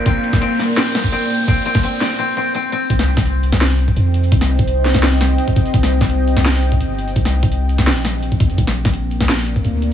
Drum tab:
HH |x-x-x-x-x-x-x-x-|x-x-x-x---------|x---x-x-x-x-x-xo|x---x-x-x-x-x-xo|
SD |---o--o-o-o-----|---o--o---------|-o-o---oo-------|-o----ooo-o-----|
BD |o--o-------o----|o--o------------|o--o-------o----|o--o---------oo-|

HH |x---x-x-x-x-x-xo|x---x-x-x-x-x-xo|x---x-x-x-x-x-x-|
SD |-o-o---oo-------|-o-----oo-o-----|-o-o---oo-------|
BD |o--o-------o----|o--o---------oo-|o--o-------o----|